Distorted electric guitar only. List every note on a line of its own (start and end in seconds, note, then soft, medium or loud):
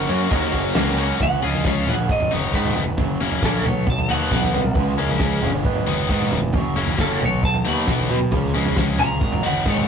0.08 0.30 F#3 medium
0.08 0.31 A#3 medium
0.08 0.31 C#4 medium
0.08 0.32 F#4 medium
0.31 0.75 F#3 medium
0.31 0.75 A#3 medium
0.31 0.76 C#4 medium
0.31 0.76 F#4 medium
0.76 0.97 F#3 medium
0.76 0.98 A#3 medium
0.76 0.98 C#4 medium
0.76 0.99 F#4 medium
0.98 1.19 F#3 medium
0.98 1.19 A#3 medium
0.98 1.20 C#4 medium
0.98 1.20 F#4 medium
1.43 1.64 G#3 medium
1.43 1.64 C#4 medium
1.43 1.65 F4 medium
1.43 1.65 G#4 medium
1.65 1.94 G#3 medium
1.65 1.94 C#4 medium
1.65 1.94 F4 medium
1.65 1.94 G#4 medium
2.31 2.52 D#3 medium
2.31 2.53 G#3 medium
2.31 2.53 B3 medium
2.31 2.53 D#4 medium
2.54 2.83 D#3 medium
2.54 2.83 G#3 medium
2.54 2.83 B3 medium
2.54 2.83 D#4 medium
3.21 3.42 C#3 medium
3.21 3.42 F#3 medium
3.21 3.42 A#3 medium
3.21 3.43 C#4 medium
3.43 3.65 C#3 medium
3.43 3.65 F#3 medium
3.43 3.65 A#3 medium
3.43 3.66 C#4 medium
4.09 4.30 B2 medium
4.09 4.30 F#3 medium
4.09 4.30 B3 medium
4.09 4.31 D#4 medium
4.31 4.60 B2 medium
4.31 4.60 F#3 medium
4.31 4.61 B3 medium
4.31 4.61 D#4 medium
4.98 5.19 C#3 medium
4.98 5.20 F3 medium
4.98 5.20 G#3 medium
4.98 5.20 C#4 medium
5.20 5.50 C#3 medium
5.20 5.50 F3 medium
5.20 5.50 G#3 medium
5.20 5.50 C#4 medium
5.87 6.08 D#3 medium
5.87 6.09 G#3 medium
5.87 6.09 B3 medium
5.87 6.09 D#4 medium
6.10 6.39 D#3 medium
6.10 6.39 G#3 medium
6.10 6.39 B3 medium
6.10 6.39 D#4 medium
6.76 6.96 C#3 medium
6.76 6.97 F#3 medium
6.76 6.97 A#3 medium
6.76 6.98 C#4 medium
6.97 7.20 C#3 medium
6.97 7.21 F#3 medium
6.97 7.21 A#3 medium
6.97 7.21 C#4 medium
7.65 7.86 B2 medium
7.65 7.86 F#3 medium
7.65 7.87 B3 medium
7.65 7.87 D#4 loud
7.87 8.17 B2 medium
7.87 8.17 F#3 medium
7.87 8.17 B3 medium
7.87 8.17 D#4 medium
8.54 8.75 C#3 medium
8.54 8.75 F3 medium
8.54 8.76 G#3 medium
8.54 8.76 C#4 medium
8.77 9.06 C#3 medium
8.77 9.06 F3 medium
8.77 9.06 G#3 medium
8.77 9.06 C#4 medium
9.43 9.64 D#3 medium
9.43 9.64 G#3 medium
9.43 9.65 B3 medium
9.43 9.65 D#4 medium
9.65 9.88 D#3 medium
9.65 9.88 G#3 medium
9.65 9.88 B3 medium
9.65 9.88 D#4 medium